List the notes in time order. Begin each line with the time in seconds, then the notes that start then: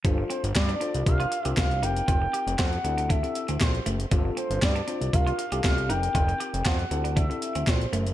0.04 G1 G3 D4 F4 A4 C5, kick, closed hi-hat
0.18 muted clean electric guitar stroke
0.30 C4 C5, closed hi-hat
0.44 G1, closed hi-hat
0.55 G2 D5, muted clean electric guitar stroke, kick, snare, clap, closed hi-hat
0.69 D4, closed hi-hat
0.81 D4 F4 A4 C5, closed hi-hat
0.94 C2, closed hi-hat
1.06 C2 D4 F4 G4 A#4 F5, kick, closed hi-hat
1.20 F4, closed hi-hat
1.32 muted clean electric guitar stroke, closed hi-hat
1.42 C2 D4 F4 G4 C5 E5, closed hi-hat
1.57 C2 F5, kick, snare, clap, closed hi-hat
1.71 closed hi-hat
1.82 F1 C4 D#4 G4 A#4 G5, closed hi-hat
1.97 closed hi-hat
2.08 F1 F4, kick, closed hi-hat
2.22 muted clean electric guitar stroke
2.33 G4, closed hi-hat
2.47 F1, closed hi-hat
2.59 F2 F4 F#5, kick, snare, clap, closed hi-hat
2.73 closed hi-hat
2.84 D2 C4 E4 G4 A4, muted clean electric guitar stroke, closed hi-hat
2.98 D4, closed hi-hat
3.09 D4 E5, kick, closed hi-hat
3.23 C4 E4 G4 A4, muted clean electric guitar stroke, closed hi-hat
3.35 closed hi-hat
3.48 D2 C4, closed hi-hat
3.60 A#1 C5, kick, snare, clap, closed hi-hat
3.75 closed hi-hat
3.86 F#1 A3, closed hi-hat
4.00 closed hi-hat
4.11 G1 G3 C4 D4 F4 G4, kick, closed hi-hat
4.18 A4
4.25 muted clean electric guitar stroke
4.37 C4 C5, closed hi-hat
4.50 G1, closed hi-hat
4.62 G2 D5, muted clean electric guitar stroke, kick, snare, clap, closed hi-hat
4.76 D4, closed hi-hat
4.87 C4 D4 F4 C5, closed hi-hat
5.01 C2, closed hi-hat
5.13 C2 D4 F4 G4 A#4 F5, kick, closed hi-hat
5.27 F4, closed hi-hat
5.38 muted clean electric guitar stroke, closed hi-hat
5.52 C2 D4 F4 G4 A4, closed hi-hat
5.64 C2 F5, kick, snare, clap, closed hi-hat
5.78 closed hi-hat
5.89 F1 C4 D#4 G4 A#4 G5, closed hi-hat
6.03 closed hi-hat
6.15 F1 F4, kick, closed hi-hat
6.28 muted clean electric guitar stroke, closed hi-hat
6.40 G4, closed hi-hat
6.54 F1, closed hi-hat
6.65 F2 F4 F#5, kick, snare, clap, closed hi-hat
6.79 closed hi-hat
6.91 D2 C4 E4 G4 A4, muted clean electric guitar stroke, closed hi-hat
7.04 D4, closed hi-hat
7.16 D4 E5, kick, closed hi-hat
7.30 C4 E4 G4 A4, muted clean electric guitar stroke, closed hi-hat
7.42 closed hi-hat
7.55 D2 C4, closed hi-hat
7.67 A#1 C5, kick, snare, clap, closed hi-hat
7.81 closed hi-hat
7.93 F#1 A3, closed hi-hat
8.07 closed hi-hat